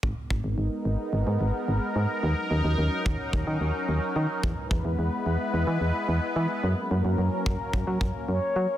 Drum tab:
BD |oo------|---oo---|oo------|---ooo--|